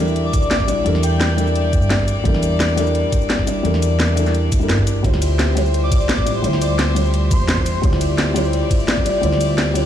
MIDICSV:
0, 0, Header, 1, 6, 480
1, 0, Start_track
1, 0, Key_signature, -1, "minor"
1, 0, Tempo, 348837
1, 1181, Time_signature, 4, 2, 24, 8
1, 13563, End_track
2, 0, Start_track
2, 0, Title_t, "Digital synth lead"
2, 0, Program_c, 0, 84
2, 348, Note_on_c, 0, 74, 94
2, 633, Note_off_c, 0, 74, 0
2, 702, Note_on_c, 0, 74, 97
2, 992, Note_off_c, 0, 74, 0
2, 1423, Note_on_c, 0, 79, 90
2, 1902, Note_off_c, 0, 79, 0
2, 8028, Note_on_c, 0, 74, 94
2, 8313, Note_off_c, 0, 74, 0
2, 8380, Note_on_c, 0, 74, 96
2, 8671, Note_off_c, 0, 74, 0
2, 9103, Note_on_c, 0, 74, 92
2, 9182, Note_off_c, 0, 74, 0
2, 9228, Note_on_c, 0, 74, 78
2, 9301, Note_off_c, 0, 74, 0
2, 10062, Note_on_c, 0, 72, 97
2, 10736, Note_off_c, 0, 72, 0
2, 13563, End_track
3, 0, Start_track
3, 0, Title_t, "String section"
3, 0, Program_c, 1, 48
3, 0, Note_on_c, 1, 55, 89
3, 0, Note_on_c, 1, 74, 98
3, 0, Note_on_c, 1, 76, 78
3, 6886, Note_off_c, 1, 55, 0
3, 6886, Note_off_c, 1, 74, 0
3, 6887, Note_off_c, 1, 76, 0
3, 6940, Note_on_c, 1, 55, 83
3, 6941, Note_on_c, 1, 67, 82
3, 6941, Note_on_c, 1, 72, 98
3, 6941, Note_on_c, 1, 76, 82
3, 10743, Note_off_c, 1, 72, 0
3, 10780, Note_on_c, 1, 74, 99
3, 13563, Note_off_c, 1, 55, 0
3, 13563, Note_off_c, 1, 67, 0
3, 13563, Note_off_c, 1, 74, 0
3, 13563, Note_off_c, 1, 76, 0
3, 13563, End_track
4, 0, Start_track
4, 0, Title_t, "Felt piano"
4, 0, Program_c, 2, 0
4, 0, Control_c, 2, 64, 127
4, 0, Note_on_c, 2, 55, 86
4, 0, Note_on_c, 2, 62, 78
4, 0, Note_on_c, 2, 64, 82
4, 0, Note_on_c, 2, 70, 99
4, 5, Note_off_c, 2, 70, 0
4, 5, Note_on_c, 2, 70, 99
4, 901, Note_off_c, 2, 55, 0
4, 910, Note_off_c, 2, 62, 0
4, 918, Note_off_c, 2, 64, 0
4, 926, Note_off_c, 2, 70, 0
4, 929, Note_on_c, 2, 55, 79
4, 936, Note_on_c, 2, 62, 67
4, 945, Note_on_c, 2, 64, 74
4, 953, Note_on_c, 2, 74, 86
4, 1137, Note_off_c, 2, 55, 0
4, 1151, Note_off_c, 2, 62, 0
4, 1155, Note_off_c, 2, 64, 0
4, 1158, Note_on_c, 2, 55, 86
4, 1160, Note_off_c, 2, 74, 0
4, 1173, Note_on_c, 2, 62, 84
4, 1190, Note_on_c, 2, 64, 80
4, 1206, Note_on_c, 2, 70, 99
4, 1857, Note_off_c, 2, 55, 0
4, 1870, Note_off_c, 2, 62, 0
4, 1878, Note_off_c, 2, 64, 0
4, 1878, Note_on_c, 2, 55, 74
4, 1886, Note_off_c, 2, 70, 0
4, 1894, Note_on_c, 2, 62, 70
4, 1909, Note_on_c, 2, 64, 67
4, 1926, Note_on_c, 2, 70, 84
4, 3056, Note_off_c, 2, 55, 0
4, 3070, Note_off_c, 2, 62, 0
4, 3077, Note_on_c, 2, 55, 84
4, 3078, Note_off_c, 2, 64, 0
4, 3086, Note_off_c, 2, 70, 0
4, 3093, Note_on_c, 2, 62, 82
4, 3109, Note_on_c, 2, 64, 81
4, 3125, Note_on_c, 2, 70, 97
4, 3777, Note_off_c, 2, 55, 0
4, 3789, Note_off_c, 2, 62, 0
4, 3798, Note_off_c, 2, 64, 0
4, 3798, Note_on_c, 2, 55, 91
4, 3806, Note_off_c, 2, 70, 0
4, 3813, Note_on_c, 2, 62, 82
4, 3830, Note_on_c, 2, 64, 82
4, 3845, Note_on_c, 2, 70, 98
4, 4742, Note_off_c, 2, 55, 0
4, 4750, Note_off_c, 2, 62, 0
4, 4758, Note_off_c, 2, 64, 0
4, 4766, Note_off_c, 2, 70, 0
4, 4768, Note_on_c, 2, 55, 76
4, 4777, Note_on_c, 2, 62, 71
4, 4783, Note_on_c, 2, 64, 69
4, 4792, Note_on_c, 2, 74, 84
4, 4975, Note_off_c, 2, 55, 0
4, 4991, Note_off_c, 2, 62, 0
4, 4995, Note_off_c, 2, 64, 0
4, 4996, Note_on_c, 2, 55, 85
4, 4999, Note_off_c, 2, 74, 0
4, 5012, Note_on_c, 2, 62, 78
4, 5028, Note_on_c, 2, 64, 79
4, 5044, Note_on_c, 2, 70, 97
4, 5697, Note_off_c, 2, 55, 0
4, 5709, Note_off_c, 2, 62, 0
4, 5717, Note_off_c, 2, 64, 0
4, 5717, Note_on_c, 2, 55, 77
4, 5725, Note_off_c, 2, 70, 0
4, 5733, Note_on_c, 2, 62, 68
4, 5749, Note_on_c, 2, 64, 69
4, 5765, Note_on_c, 2, 70, 81
4, 6304, Note_off_c, 2, 55, 0
4, 6318, Note_off_c, 2, 62, 0
4, 6325, Note_on_c, 2, 55, 81
4, 6326, Note_off_c, 2, 64, 0
4, 6334, Note_off_c, 2, 70, 0
4, 6341, Note_on_c, 2, 62, 76
4, 6357, Note_on_c, 2, 64, 74
4, 6373, Note_on_c, 2, 70, 87
4, 6898, Note_off_c, 2, 55, 0
4, 6910, Note_off_c, 2, 62, 0
4, 6915, Note_off_c, 2, 64, 0
4, 6919, Note_on_c, 2, 55, 88
4, 6927, Note_off_c, 2, 70, 0
4, 6936, Note_on_c, 2, 64, 76
4, 6951, Note_on_c, 2, 65, 82
4, 6955, Control_c, 2, 64, 0
4, 6968, Note_on_c, 2, 72, 96
4, 7184, Control_c, 2, 64, 127
4, 7618, Note_off_c, 2, 55, 0
4, 7631, Note_off_c, 2, 64, 0
4, 7638, Note_off_c, 2, 65, 0
4, 7638, Note_on_c, 2, 55, 87
4, 7647, Note_off_c, 2, 72, 0
4, 7655, Note_on_c, 2, 64, 83
4, 7670, Note_on_c, 2, 65, 84
4, 7686, Note_on_c, 2, 72, 99
4, 8582, Note_off_c, 2, 55, 0
4, 8590, Note_off_c, 2, 64, 0
4, 8598, Note_off_c, 2, 65, 0
4, 8606, Note_off_c, 2, 72, 0
4, 8608, Note_on_c, 2, 55, 75
4, 8617, Note_on_c, 2, 64, 68
4, 8625, Note_on_c, 2, 65, 71
4, 8633, Note_on_c, 2, 74, 83
4, 8818, Note_off_c, 2, 55, 0
4, 8831, Note_off_c, 2, 64, 0
4, 8835, Note_off_c, 2, 65, 0
4, 8838, Note_on_c, 2, 55, 86
4, 8840, Note_off_c, 2, 74, 0
4, 8854, Note_on_c, 2, 64, 84
4, 8871, Note_on_c, 2, 65, 80
4, 8886, Note_on_c, 2, 72, 95
4, 9537, Note_off_c, 2, 55, 0
4, 9550, Note_off_c, 2, 64, 0
4, 9558, Note_on_c, 2, 55, 76
4, 9559, Note_off_c, 2, 65, 0
4, 9566, Note_off_c, 2, 72, 0
4, 9574, Note_on_c, 2, 64, 70
4, 9590, Note_on_c, 2, 65, 72
4, 9606, Note_on_c, 2, 72, 85
4, 10736, Note_off_c, 2, 55, 0
4, 10750, Note_off_c, 2, 64, 0
4, 10757, Note_on_c, 2, 55, 89
4, 10758, Note_off_c, 2, 65, 0
4, 10766, Note_off_c, 2, 72, 0
4, 10773, Note_on_c, 2, 64, 79
4, 10789, Note_on_c, 2, 65, 79
4, 10805, Note_on_c, 2, 72, 95
4, 11457, Note_off_c, 2, 55, 0
4, 11470, Note_off_c, 2, 64, 0
4, 11477, Note_off_c, 2, 65, 0
4, 11478, Note_on_c, 2, 55, 92
4, 11486, Note_off_c, 2, 72, 0
4, 11494, Note_on_c, 2, 64, 84
4, 11510, Note_on_c, 2, 65, 80
4, 11526, Note_on_c, 2, 72, 104
4, 12422, Note_off_c, 2, 55, 0
4, 12430, Note_off_c, 2, 64, 0
4, 12438, Note_off_c, 2, 65, 0
4, 12446, Note_off_c, 2, 72, 0
4, 12452, Note_on_c, 2, 55, 72
4, 12459, Note_on_c, 2, 64, 68
4, 12467, Note_on_c, 2, 65, 72
4, 12475, Note_on_c, 2, 74, 87
4, 12657, Note_off_c, 2, 55, 0
4, 12673, Note_off_c, 2, 64, 0
4, 12676, Note_off_c, 2, 65, 0
4, 12678, Note_on_c, 2, 55, 89
4, 12681, Note_off_c, 2, 74, 0
4, 12694, Note_on_c, 2, 64, 84
4, 12710, Note_on_c, 2, 65, 76
4, 12726, Note_on_c, 2, 72, 95
4, 13379, Note_off_c, 2, 55, 0
4, 13390, Note_off_c, 2, 64, 0
4, 13398, Note_off_c, 2, 65, 0
4, 13399, Note_on_c, 2, 55, 78
4, 13406, Note_off_c, 2, 72, 0
4, 13415, Note_on_c, 2, 64, 68
4, 13432, Note_on_c, 2, 65, 69
4, 13448, Note_on_c, 2, 72, 88
4, 13563, Note_off_c, 2, 55, 0
4, 13563, Note_off_c, 2, 64, 0
4, 13563, Note_off_c, 2, 65, 0
4, 13563, Note_off_c, 2, 72, 0
4, 13563, End_track
5, 0, Start_track
5, 0, Title_t, "Upright bass"
5, 0, Program_c, 3, 32
5, 0, Note_on_c, 3, 40, 97
5, 461, Note_off_c, 3, 40, 0
5, 461, Note_on_c, 3, 38, 106
5, 827, Note_off_c, 3, 38, 0
5, 827, Note_on_c, 3, 34, 97
5, 1163, Note_off_c, 3, 34, 0
5, 1182, Note_on_c, 3, 40, 98
5, 2507, Note_off_c, 3, 40, 0
5, 2507, Note_on_c, 3, 43, 89
5, 2967, Note_off_c, 3, 43, 0
5, 3100, Note_on_c, 3, 40, 99
5, 4166, Note_off_c, 3, 40, 0
5, 5020, Note_on_c, 3, 40, 97
5, 6220, Note_off_c, 3, 40, 0
5, 6220, Note_on_c, 3, 38, 87
5, 6461, Note_off_c, 3, 38, 0
5, 6461, Note_on_c, 3, 43, 81
5, 6923, Note_off_c, 3, 43, 0
5, 6940, Note_on_c, 3, 38, 103
5, 8141, Note_off_c, 3, 38, 0
5, 8141, Note_on_c, 3, 36, 107
5, 8507, Note_off_c, 3, 36, 0
5, 8507, Note_on_c, 3, 33, 97
5, 8843, Note_off_c, 3, 33, 0
5, 8862, Note_on_c, 3, 38, 94
5, 10187, Note_off_c, 3, 38, 0
5, 10187, Note_on_c, 3, 40, 86
5, 10647, Note_off_c, 3, 40, 0
5, 10780, Note_on_c, 3, 38, 98
5, 11846, Note_off_c, 3, 38, 0
5, 12701, Note_on_c, 3, 38, 96
5, 13563, Note_off_c, 3, 38, 0
5, 13563, End_track
6, 0, Start_track
6, 0, Title_t, "Drums"
6, 107, Note_on_c, 9, 69, 28
6, 219, Note_on_c, 9, 42, 75
6, 244, Note_off_c, 9, 69, 0
6, 357, Note_off_c, 9, 42, 0
6, 460, Note_on_c, 9, 42, 90
6, 460, Note_on_c, 9, 69, 59
6, 461, Note_on_c, 9, 36, 113
6, 586, Note_off_c, 9, 69, 0
6, 586, Note_on_c, 9, 69, 28
6, 597, Note_off_c, 9, 42, 0
6, 598, Note_off_c, 9, 36, 0
6, 699, Note_on_c, 9, 38, 123
6, 699, Note_on_c, 9, 42, 80
6, 723, Note_off_c, 9, 69, 0
6, 825, Note_on_c, 9, 40, 34
6, 827, Note_on_c, 9, 36, 63
6, 837, Note_off_c, 9, 38, 0
6, 837, Note_off_c, 9, 42, 0
6, 940, Note_on_c, 9, 42, 90
6, 940, Note_on_c, 9, 69, 62
6, 963, Note_off_c, 9, 40, 0
6, 964, Note_off_c, 9, 36, 0
6, 1077, Note_off_c, 9, 42, 0
6, 1077, Note_off_c, 9, 69, 0
6, 1180, Note_on_c, 9, 42, 81
6, 1306, Note_on_c, 9, 40, 53
6, 1318, Note_off_c, 9, 42, 0
6, 1419, Note_on_c, 9, 42, 96
6, 1419, Note_on_c, 9, 69, 63
6, 1443, Note_off_c, 9, 40, 0
6, 1557, Note_off_c, 9, 42, 0
6, 1557, Note_off_c, 9, 69, 0
6, 1660, Note_on_c, 9, 38, 116
6, 1660, Note_on_c, 9, 42, 78
6, 1797, Note_off_c, 9, 38, 0
6, 1797, Note_off_c, 9, 42, 0
6, 1900, Note_on_c, 9, 42, 92
6, 1900, Note_on_c, 9, 69, 66
6, 2026, Note_off_c, 9, 69, 0
6, 2026, Note_on_c, 9, 69, 28
6, 2038, Note_off_c, 9, 42, 0
6, 2140, Note_on_c, 9, 42, 81
6, 2164, Note_off_c, 9, 69, 0
6, 2277, Note_off_c, 9, 42, 0
6, 2380, Note_on_c, 9, 36, 103
6, 2380, Note_on_c, 9, 42, 89
6, 2380, Note_on_c, 9, 69, 60
6, 2506, Note_off_c, 9, 69, 0
6, 2506, Note_on_c, 9, 69, 30
6, 2518, Note_off_c, 9, 36, 0
6, 2518, Note_off_c, 9, 42, 0
6, 2620, Note_on_c, 9, 38, 121
6, 2620, Note_on_c, 9, 42, 81
6, 2644, Note_off_c, 9, 69, 0
6, 2746, Note_on_c, 9, 36, 61
6, 2758, Note_off_c, 9, 38, 0
6, 2758, Note_off_c, 9, 42, 0
6, 2860, Note_on_c, 9, 42, 94
6, 2860, Note_on_c, 9, 69, 63
6, 2884, Note_off_c, 9, 36, 0
6, 2997, Note_off_c, 9, 42, 0
6, 2997, Note_off_c, 9, 69, 0
6, 3100, Note_on_c, 9, 36, 115
6, 3100, Note_on_c, 9, 42, 80
6, 3225, Note_on_c, 9, 40, 54
6, 3237, Note_off_c, 9, 36, 0
6, 3238, Note_off_c, 9, 42, 0
6, 3339, Note_on_c, 9, 42, 97
6, 3339, Note_on_c, 9, 69, 66
6, 3363, Note_off_c, 9, 40, 0
6, 3476, Note_off_c, 9, 42, 0
6, 3476, Note_off_c, 9, 69, 0
6, 3580, Note_on_c, 9, 38, 115
6, 3580, Note_on_c, 9, 42, 85
6, 3717, Note_off_c, 9, 38, 0
6, 3717, Note_off_c, 9, 42, 0
6, 3819, Note_on_c, 9, 40, 35
6, 3819, Note_on_c, 9, 42, 91
6, 3819, Note_on_c, 9, 69, 62
6, 3945, Note_off_c, 9, 69, 0
6, 3945, Note_on_c, 9, 69, 30
6, 3956, Note_off_c, 9, 40, 0
6, 3956, Note_off_c, 9, 42, 0
6, 4058, Note_on_c, 9, 42, 82
6, 4083, Note_off_c, 9, 69, 0
6, 4196, Note_off_c, 9, 42, 0
6, 4299, Note_on_c, 9, 42, 97
6, 4299, Note_on_c, 9, 69, 63
6, 4300, Note_on_c, 9, 36, 100
6, 4424, Note_off_c, 9, 69, 0
6, 4424, Note_on_c, 9, 69, 30
6, 4437, Note_off_c, 9, 36, 0
6, 4437, Note_off_c, 9, 42, 0
6, 4538, Note_on_c, 9, 38, 116
6, 4538, Note_on_c, 9, 42, 83
6, 4562, Note_off_c, 9, 69, 0
6, 4665, Note_on_c, 9, 40, 33
6, 4666, Note_on_c, 9, 36, 60
6, 4676, Note_off_c, 9, 38, 0
6, 4676, Note_off_c, 9, 42, 0
6, 4779, Note_on_c, 9, 42, 96
6, 4779, Note_on_c, 9, 69, 64
6, 4803, Note_off_c, 9, 36, 0
6, 4803, Note_off_c, 9, 40, 0
6, 4916, Note_off_c, 9, 42, 0
6, 4916, Note_off_c, 9, 69, 0
6, 5020, Note_on_c, 9, 42, 88
6, 5147, Note_on_c, 9, 40, 58
6, 5157, Note_off_c, 9, 42, 0
6, 5261, Note_on_c, 9, 42, 96
6, 5261, Note_on_c, 9, 69, 62
6, 5284, Note_off_c, 9, 40, 0
6, 5399, Note_off_c, 9, 42, 0
6, 5399, Note_off_c, 9, 69, 0
6, 5500, Note_on_c, 9, 38, 118
6, 5500, Note_on_c, 9, 42, 85
6, 5637, Note_off_c, 9, 38, 0
6, 5637, Note_off_c, 9, 42, 0
6, 5740, Note_on_c, 9, 42, 97
6, 5740, Note_on_c, 9, 69, 61
6, 5866, Note_off_c, 9, 69, 0
6, 5866, Note_on_c, 9, 38, 36
6, 5866, Note_on_c, 9, 69, 29
6, 5877, Note_off_c, 9, 42, 0
6, 5979, Note_on_c, 9, 42, 85
6, 6003, Note_off_c, 9, 38, 0
6, 6003, Note_off_c, 9, 69, 0
6, 6116, Note_off_c, 9, 42, 0
6, 6219, Note_on_c, 9, 42, 103
6, 6219, Note_on_c, 9, 69, 63
6, 6220, Note_on_c, 9, 36, 105
6, 6346, Note_off_c, 9, 69, 0
6, 6346, Note_on_c, 9, 69, 29
6, 6357, Note_off_c, 9, 42, 0
6, 6358, Note_off_c, 9, 36, 0
6, 6460, Note_on_c, 9, 38, 118
6, 6460, Note_on_c, 9, 42, 84
6, 6484, Note_off_c, 9, 69, 0
6, 6586, Note_on_c, 9, 36, 58
6, 6597, Note_off_c, 9, 38, 0
6, 6597, Note_off_c, 9, 42, 0
6, 6701, Note_on_c, 9, 42, 99
6, 6701, Note_on_c, 9, 69, 64
6, 6724, Note_off_c, 9, 36, 0
6, 6838, Note_off_c, 9, 42, 0
6, 6838, Note_off_c, 9, 69, 0
6, 6940, Note_on_c, 9, 36, 122
6, 6941, Note_on_c, 9, 42, 86
6, 7067, Note_on_c, 9, 40, 57
6, 7078, Note_off_c, 9, 36, 0
6, 7079, Note_off_c, 9, 42, 0
6, 7180, Note_on_c, 9, 42, 97
6, 7180, Note_on_c, 9, 51, 74
6, 7180, Note_on_c, 9, 69, 63
6, 7205, Note_off_c, 9, 40, 0
6, 7317, Note_off_c, 9, 42, 0
6, 7317, Note_off_c, 9, 51, 0
6, 7317, Note_off_c, 9, 69, 0
6, 7420, Note_on_c, 9, 38, 123
6, 7420, Note_on_c, 9, 42, 85
6, 7557, Note_off_c, 9, 38, 0
6, 7557, Note_off_c, 9, 42, 0
6, 7661, Note_on_c, 9, 40, 37
6, 7661, Note_on_c, 9, 42, 96
6, 7661, Note_on_c, 9, 51, 72
6, 7661, Note_on_c, 9, 69, 60
6, 7787, Note_off_c, 9, 69, 0
6, 7787, Note_on_c, 9, 69, 29
6, 7799, Note_off_c, 9, 40, 0
6, 7799, Note_off_c, 9, 42, 0
6, 7799, Note_off_c, 9, 51, 0
6, 7901, Note_on_c, 9, 42, 83
6, 7925, Note_off_c, 9, 69, 0
6, 8039, Note_off_c, 9, 42, 0
6, 8141, Note_on_c, 9, 36, 115
6, 8142, Note_on_c, 9, 42, 102
6, 8142, Note_on_c, 9, 51, 73
6, 8142, Note_on_c, 9, 69, 61
6, 8268, Note_off_c, 9, 69, 0
6, 8268, Note_on_c, 9, 69, 29
6, 8279, Note_off_c, 9, 36, 0
6, 8279, Note_off_c, 9, 42, 0
6, 8279, Note_off_c, 9, 51, 0
6, 8381, Note_on_c, 9, 38, 125
6, 8381, Note_on_c, 9, 42, 88
6, 8405, Note_off_c, 9, 69, 0
6, 8507, Note_on_c, 9, 36, 62
6, 8508, Note_on_c, 9, 40, 37
6, 8519, Note_off_c, 9, 38, 0
6, 8519, Note_off_c, 9, 42, 0
6, 8622, Note_on_c, 9, 42, 96
6, 8622, Note_on_c, 9, 51, 72
6, 8622, Note_on_c, 9, 69, 59
6, 8644, Note_off_c, 9, 36, 0
6, 8645, Note_off_c, 9, 40, 0
6, 8759, Note_off_c, 9, 42, 0
6, 8759, Note_off_c, 9, 51, 0
6, 8759, Note_off_c, 9, 69, 0
6, 8862, Note_on_c, 9, 42, 88
6, 8989, Note_on_c, 9, 40, 55
6, 9000, Note_off_c, 9, 42, 0
6, 9103, Note_on_c, 9, 42, 95
6, 9103, Note_on_c, 9, 51, 71
6, 9103, Note_on_c, 9, 69, 61
6, 9126, Note_off_c, 9, 40, 0
6, 9240, Note_off_c, 9, 42, 0
6, 9240, Note_off_c, 9, 51, 0
6, 9240, Note_off_c, 9, 69, 0
6, 9342, Note_on_c, 9, 38, 127
6, 9342, Note_on_c, 9, 42, 82
6, 9480, Note_off_c, 9, 38, 0
6, 9480, Note_off_c, 9, 42, 0
6, 9582, Note_on_c, 9, 42, 95
6, 9582, Note_on_c, 9, 51, 71
6, 9582, Note_on_c, 9, 69, 56
6, 9708, Note_off_c, 9, 69, 0
6, 9708, Note_on_c, 9, 69, 27
6, 9719, Note_off_c, 9, 42, 0
6, 9719, Note_off_c, 9, 51, 0
6, 9821, Note_on_c, 9, 42, 82
6, 9845, Note_off_c, 9, 69, 0
6, 9959, Note_off_c, 9, 42, 0
6, 10060, Note_on_c, 9, 36, 120
6, 10060, Note_on_c, 9, 42, 95
6, 10060, Note_on_c, 9, 51, 73
6, 10060, Note_on_c, 9, 69, 60
6, 10187, Note_off_c, 9, 69, 0
6, 10187, Note_on_c, 9, 69, 27
6, 10198, Note_off_c, 9, 36, 0
6, 10198, Note_off_c, 9, 42, 0
6, 10198, Note_off_c, 9, 51, 0
6, 10300, Note_on_c, 9, 38, 127
6, 10300, Note_on_c, 9, 42, 81
6, 10325, Note_off_c, 9, 69, 0
6, 10426, Note_on_c, 9, 36, 65
6, 10438, Note_off_c, 9, 38, 0
6, 10438, Note_off_c, 9, 42, 0
6, 10540, Note_on_c, 9, 42, 98
6, 10540, Note_on_c, 9, 51, 72
6, 10540, Note_on_c, 9, 69, 56
6, 10564, Note_off_c, 9, 36, 0
6, 10678, Note_off_c, 9, 42, 0
6, 10678, Note_off_c, 9, 51, 0
6, 10678, Note_off_c, 9, 69, 0
6, 10780, Note_on_c, 9, 36, 125
6, 10780, Note_on_c, 9, 42, 82
6, 10907, Note_on_c, 9, 40, 59
6, 10918, Note_off_c, 9, 36, 0
6, 10918, Note_off_c, 9, 42, 0
6, 11021, Note_on_c, 9, 42, 91
6, 11021, Note_on_c, 9, 51, 75
6, 11021, Note_on_c, 9, 69, 56
6, 11045, Note_off_c, 9, 40, 0
6, 11159, Note_off_c, 9, 42, 0
6, 11159, Note_off_c, 9, 51, 0
6, 11159, Note_off_c, 9, 69, 0
6, 11261, Note_on_c, 9, 38, 127
6, 11261, Note_on_c, 9, 42, 75
6, 11399, Note_off_c, 9, 38, 0
6, 11399, Note_off_c, 9, 42, 0
6, 11502, Note_on_c, 9, 40, 39
6, 11502, Note_on_c, 9, 42, 94
6, 11502, Note_on_c, 9, 51, 73
6, 11502, Note_on_c, 9, 69, 59
6, 11627, Note_off_c, 9, 69, 0
6, 11627, Note_on_c, 9, 69, 26
6, 11639, Note_off_c, 9, 40, 0
6, 11639, Note_off_c, 9, 42, 0
6, 11639, Note_off_c, 9, 51, 0
6, 11741, Note_on_c, 9, 42, 77
6, 11765, Note_off_c, 9, 69, 0
6, 11879, Note_off_c, 9, 42, 0
6, 11980, Note_on_c, 9, 36, 114
6, 11982, Note_on_c, 9, 42, 91
6, 11982, Note_on_c, 9, 51, 77
6, 11982, Note_on_c, 9, 69, 58
6, 12109, Note_off_c, 9, 69, 0
6, 12109, Note_on_c, 9, 69, 28
6, 12118, Note_off_c, 9, 36, 0
6, 12120, Note_off_c, 9, 42, 0
6, 12120, Note_off_c, 9, 51, 0
6, 12222, Note_on_c, 9, 38, 127
6, 12222, Note_on_c, 9, 42, 80
6, 12247, Note_off_c, 9, 69, 0
6, 12347, Note_on_c, 9, 36, 66
6, 12349, Note_on_c, 9, 40, 38
6, 12360, Note_off_c, 9, 38, 0
6, 12360, Note_off_c, 9, 42, 0
6, 12463, Note_on_c, 9, 42, 93
6, 12463, Note_on_c, 9, 51, 73
6, 12463, Note_on_c, 9, 69, 56
6, 12484, Note_off_c, 9, 36, 0
6, 12487, Note_off_c, 9, 40, 0
6, 12601, Note_off_c, 9, 42, 0
6, 12601, Note_off_c, 9, 51, 0
6, 12601, Note_off_c, 9, 69, 0
6, 12703, Note_on_c, 9, 42, 80
6, 12829, Note_on_c, 9, 40, 54
6, 12840, Note_off_c, 9, 42, 0
6, 12943, Note_on_c, 9, 42, 93
6, 12943, Note_on_c, 9, 51, 80
6, 12943, Note_on_c, 9, 69, 61
6, 12967, Note_off_c, 9, 40, 0
6, 13081, Note_off_c, 9, 42, 0
6, 13081, Note_off_c, 9, 51, 0
6, 13081, Note_off_c, 9, 69, 0
6, 13183, Note_on_c, 9, 38, 125
6, 13183, Note_on_c, 9, 42, 77
6, 13321, Note_off_c, 9, 38, 0
6, 13321, Note_off_c, 9, 42, 0
6, 13422, Note_on_c, 9, 42, 87
6, 13422, Note_on_c, 9, 51, 74
6, 13422, Note_on_c, 9, 69, 57
6, 13559, Note_off_c, 9, 42, 0
6, 13559, Note_off_c, 9, 51, 0
6, 13559, Note_off_c, 9, 69, 0
6, 13563, End_track
0, 0, End_of_file